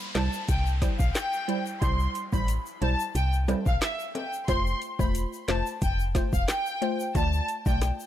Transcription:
Already playing: synth pluck G3 E4 C5, downlifter
0.00 shaker
0.15 fm bass C2, synth pluck G3 E4 C5, violin section A5, snare, clap, closed hi-hat
0.33 shaker
0.48 fm bass C2, violin section G5, kick, closed hi-hat, shaker
0.66 shaker
0.82 synth pluck G3 E4 C5, kick, snare, closed hi-hat, shaker
0.99 fm bass B1, violin section F5, kick, shaker
1.15 violin section G5, snare, clap, closed hi-hat, shaker
1.33 shaker
1.48 synth pluck G3 E4 C5, closed hi-hat
1.66 shaker
1.81 fm bass C2, synth pluck G3 E4 C5, violin section C6, kick, closed hi-hat, shaker
2.00 shaker
2.15 closed hi-hat, shaker
2.33 fm bass A1, synth pluck G3 E4 C5, violin section B5, kick, shaker
2.48 closed hi-hat, shaker
2.66 shaker
2.82 fm bass B1, synth pluck G3 E4 C5, violin section A5, closed hi-hat
3.00 shaker
3.15 fm bass C2, violin section G5, closed hi-hat, shaker
3.33 shaker
3.48 synth pluck G3 E4 C5, closed hi-hat, high timbale, shaker
3.66 fm bass B1, violin section F5, kick, shaker
3.82 violin section E5, snare, clap, closed hi-hat, shaker
4.00 shaker
4.15 violin section G5, closed hi-hat, high timbale
4.33 shaker
4.48 fm bass F1, synth pluck A3 F4 C5, violin section C6, kick, closed hi-hat, shaker
4.67 shaker
4.82 closed hi-hat, shaker
4.99 fm bass E1, synth pluck A3 F4 C5, violin section B5, kick, shaker
5.15 closed hi-hat, shaker
5.33 shaker
5.48 fm bass F1, synth pluck A3 F4 C5, violin section A5, snare, clap, closed hi-hat
5.66 shaker
5.81 fm bass F1, violin section G5, kick, closed hi-hat, shaker
5.99 shaker
6.15 synth pluck A3 F4 C5, kick, snare, closed hi-hat, shaker
6.33 fm bass E1, violin section F5, kick, shaker
6.48 violin section G5, snare, clap, closed hi-hat, shaker
6.66 shaker
6.82 synth pluck A3 F4 C5, closed hi-hat
7.00 shaker
7.15 fm bass D2, synth pluck A3 F4 D5, violin section A5, kick, closed hi-hat, shaker
7.33 shaker
7.48 closed hi-hat, shaker
7.66 fm bass B1, synth pluck A3 F4 D5, violin section G5, kick, shaker
7.81 cross-stick, snare, closed hi-hat, shaker
8.00 shaker

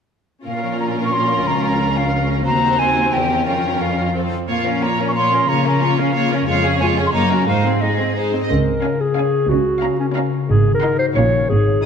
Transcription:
0.45 harp A#2, cello section A#2, viola section C#4, violin section F4 A#4, flute F5
0.63 harp F3
0.80 harp C#4, flute A#5
0.97 harp A#4
1.05 flute C#6
1.13 harp F4, flute C6
1.31 harp C#4
1.47 cello section C#2, harp C#3, flute A#5
1.64 flute A#5
1.81 harp A#4
1.97 harp F4, flute F5
2.14 harp C#5
2.31 harp A#4
2.46 cello section D#2, harp D#3, viola section C4, violin section F#4 C5, flute A#5
2.64 harp C4
2.79 harp C5, flute G#5
2.97 harp F#4
3.12 cello section E2, harp E3, violin section G4 A#4, flute G5
3.31 harp C4 A#4
3.46 cello section F2, harp F3, viola section C#4, violin section F4, flute G5
3.64 harp C#4
3.81 harp A#4, flute F5
3.97 harp C#4
4.15 harp F3, viola section C4, violin section A4
4.32 harp F4 A4
4.48 cello section A#2, harp A#2, viola section A#3, violin section F4 C#5, flute F5
4.64 violin section C#4 A#4, viola section C#4, harp C#4
4.82 viola section A#3, violin section F4 C#5, harp F4, flute A#5
4.98 violin section C#4 A#4, viola section C#4, harp A#4
5.08 flute C#6
5.15 viola section A#3, violin section F4 C#5, flute C6
5.32 violin section C#4 A#4, viola section C#4, harp F4
5.48 cello section C#3, harp C#3, viola section A#3, violin section F4 C#5, flute A#5
5.64 violin section C#4 A#4, viola section C#4, flute A#5
5.81 viola section A#3, violin section F4 C#5, harp F4
5.97 viola section C#4, violin section C#4 A#4, harp A#4, flute F5
6.14 viola section A#3, violin section F4 C#5, harp C#5
6.31 viola section C#4, violin section C#4 A#4, harp F4
6.47 cello section F2, harp F2, viola section G#3, violin section F4 C#5, flute F5
6.63 viola section C#4, harp C#4, violin section G#4
6.80 viola section G#3, harp F4, violin section F4 C#5, flute G#5
6.96 viola section C#4, violin section G#4, harp G#4
7.07 flute C6
7.12 cello section F#2, harp F#2, viola section A#3, violin section D#4 C#5, flute A#5
7.30 viola section C#4, harp D#4 A#4, violin section F#4 A#4
7.47 harp G#2, cello section G#2, viola section G#3, violin section D#4 C5, flute F5
7.65 violin section C4 G#4, viola section C4
7.81 viola section G#3, violin section D#4 G#4, harp D#4, flute D#5
7.99 violin section C4, viola section C4, harp G#4
8.16 viola section G#3, violin section D#4 C5, clarinet G#4, harp C5
8.33 viola section C4, violin section C4, harp D#4
8.42 violin section D#5
8.50 double bass section C#2, harp C#3, cello section C#3, clarinet A#4
8.67 harp G#3
8.84 viola section C#4, harp F4, violin section F5 G#5
9.01 clarinet G#4, harp G#4
9.16 viola section C#4, harp C#5, violin section F5 G#5
9.33 harp G#4
9.49 double bass section C#2, harp C#3, cello section C#3, clarinet F#4
9.67 harp A#3
9.81 viola section C#4, harp F4, violin section F5 A#5
9.99 clarinet C#4, harp A#4
10.15 viola section C#4, harp C#5, violin section F5 A#5
10.33 harp A#4
10.49 double bass section G#1, cello section G#2, harp G#2, clarinet G#4
10.66 harp D#3
10.74 clarinet A#4
10.81 viola section D#4, harp D#4, violin section F#5 C6
10.99 harp F#4, clarinet C5
11.15 double bass section A#1, harp A#2, cello section A#2, viola section C#4, clarinet C#5, violin section F5 C#6
11.33 harp C#4 F4
11.49 double bass section G#1, cello section G#2, harp G#2, clarinet G#4
11.66 harp D#3

